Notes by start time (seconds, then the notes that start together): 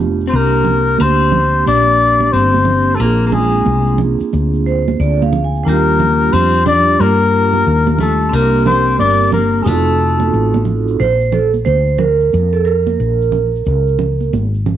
Already playing: F1 A3 B3 D4 F4 G4
0.21 shaker
0.28 A#3 C4 C5
0.32 C2 A#3 C4 D4, shaker
0.36 G4 A#4
0.54 shaker
0.65 low conga, shaker
0.87 shaker
0.98 D2 C4 C5, high conga, shaker
1.20 shaker
1.32 low conga, shaker
1.53 shaker
1.66 A#1 D4 D5, high conga, shaker
1.87 shaker
1.99 shaker
2.20 high conga, shaker
2.32 G1 C4 C5, shaker
2.54 high conga, shaker
2.65 low conga, shaker
2.88 shaker
2.94 A3 A#3 C4 A4
2.98 A#1 A#3 D4 F4 A#4, shaker
3.03 G#4
3.20 shaker
3.27 A#3 A#4
3.32 G#3 G#4, low conga, shaker
3.53 shaker
3.66 C2, high conga, shaker
3.87 shaker
3.98 low conga, shaker
4.20 muted fretless electric bass stroke, shaker
4.33 D2, high conga, shaker
4.54 shaker
4.66 C5, shaker
4.88 high conga, shaker
5.00 D2 D5, shaker
5.22 F5, high conga, shaker
5.33 low conga, shaker
5.44 G#5
5.55 shaker
5.63 D#2 G3 D4 A#4, shaker
5.68 A#3 F4 G4
5.89 shaker
6.00 low conga, shaker
6.21 shaker
6.33 F2 C4 C5, high conga, shaker
6.54 shaker
6.66 D4 D5, low conga, shaker
6.87 shaker
7.00 G2 A#3 A#4, high conga, shaker
7.20 shaker
7.32 shaker
7.53 high conga, shaker
7.66 D#2, shaker
7.87 high conga, shaker
7.99 A3 A4, low conga, shaker
8.21 shaker
8.29 C2 A#3 C4 D4, shaker
8.34 G4 A#4
8.54 shaker
8.66 C4 C5, low conga, shaker
8.87 shaker
8.99 G1 D4 D5, high conga, shaker
9.20 shaker
9.32 A#3 A#4, low conga, shaker
9.54 shaker
9.62 G#3 C4 D#4 F4 G#4
9.66 F1 A3 F#4 A4, high conga, shaker
9.86 shaker
9.99 shaker
10.20 high conga, shaker
10.32 A1, shaker
10.54 high conga, shaker
10.65 low conga, shaker
10.88 shaker
10.99 A#1 C5, shaker
11.21 shaker
11.32 A4, low conga, shaker
11.54 high conga, shaker
11.65 D2 C5, high conga, shaker
11.87 shaker
11.99 A#4, low conga, shaker
12.20 shaker
12.33 F2, high conga, shaker
12.53 A4, shaker
12.65 A#4, shaker
12.87 high conga, shaker
13.00 A#1, shaker
13.21 shaker
13.32 low conga, shaker
13.55 shaker
13.65 C#2, shaker
13.87 shaker
13.99 low conga, shaker
14.21 high conga, shaker
14.33 G#1, high conga, shaker
14.54 shaker
14.66 low conga, shaker